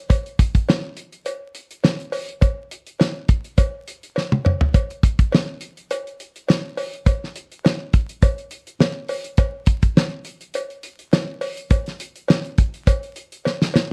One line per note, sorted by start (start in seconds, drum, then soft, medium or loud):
0.10 kick loud
0.10 closed hi-hat medium
0.10 cowbell medium
0.26 closed hi-hat soft
0.39 kick loud
0.39 closed hi-hat loud
0.55 kick medium
0.55 closed hi-hat medium
0.69 snare loud
0.69 cowbell medium
0.97 closed hi-hat medium
1.12 closed hi-hat soft
1.26 closed hi-hat medium
1.26 cowbell medium
1.55 closed hi-hat medium
1.71 closed hi-hat medium
1.84 snare medium
1.84 cowbell medium
2.00 closed hi-hat soft
2.12 open hi-hat medium
2.12 cowbell medium
2.29 closed hi-hat soft
2.41 kick loud
2.41 closed hi-hat medium
2.41 cowbell medium
2.71 closed hi-hat medium
2.87 closed hi-hat medium
3.00 snare loud
3.00 cowbell medium
3.29 kick medium
3.29 closed hi-hat medium
3.44 closed hi-hat soft
3.58 kick loud
3.58 closed hi-hat medium
3.58 cowbell medium
3.88 closed hi-hat medium
4.03 closed hi-hat soft
4.16 snare soft
4.16 cowbell medium
4.32 high tom medium
4.45 mid tom medium
4.45 cowbell medium
4.61 floor tom medium
4.74 kick loud
4.74 closed hi-hat medium
4.74 cowbell medium
4.90 closed hi-hat soft
5.03 kick loud
5.03 closed hi-hat medium
5.19 kick medium
5.19 closed hi-hat medium
5.32 snare loud
5.32 cowbell medium
5.61 closed hi-hat medium
5.77 closed hi-hat soft
5.91 closed hi-hat loud
5.91 cowbell medium
6.07 closed hi-hat soft
6.20 closed hi-hat medium
6.36 closed hi-hat soft
6.48 snare loud
6.48 cowbell medium
6.77 open hi-hat medium
6.77 cowbell medium
6.94 closed hi-hat soft
7.06 kick loud
7.06 closed hi-hat medium
7.06 cowbell medium
7.24 snare soft
7.36 closed hi-hat medium
7.52 closed hi-hat medium
7.65 snare loud
7.65 cowbell medium
7.93 kick medium
7.93 closed hi-hat medium
8.09 closed hi-hat soft
8.22 kick loud
8.22 closed hi-hat medium
8.22 cowbell medium
8.38 closed hi-hat soft
8.51 closed hi-hat medium
8.67 closed hi-hat medium
8.80 snare medium
8.80 cowbell medium
9.09 open hi-hat medium
9.09 cowbell medium
9.24 closed hi-hat medium
9.37 kick loud
9.37 closed hi-hat medium
9.37 cowbell medium
9.66 kick loud
9.66 closed hi-hat medium
9.82 kick medium
9.82 closed hi-hat medium
9.97 snare loud
9.97 cowbell medium
10.25 closed hi-hat medium
10.41 closed hi-hat soft
10.54 closed hi-hat medium
10.54 cowbell medium
10.70 closed hi-hat soft
10.83 closed hi-hat medium
10.99 closed hi-hat soft
11.13 snare loud
11.13 cowbell medium
11.41 open hi-hat medium
11.41 cowbell medium
11.57 closed hi-hat medium
11.70 kick loud
11.70 closed hi-hat medium
11.70 cowbell medium
11.86 snare soft
11.86 closed hi-hat soft
12.00 closed hi-hat loud
12.16 closed hi-hat medium
12.28 snare loud
12.28 cowbell medium
12.45 closed hi-hat soft
12.58 kick medium
12.58 closed hi-hat medium
12.74 closed hi-hat soft
12.87 kick medium
12.87 closed hi-hat loud
12.87 cowbell medium
13.03 closed hi-hat soft
13.16 closed hi-hat medium
13.32 closed hi-hat medium
13.45 snare medium
13.45 cowbell medium
13.62 snare medium
13.74 snare medium
13.74 cowbell medium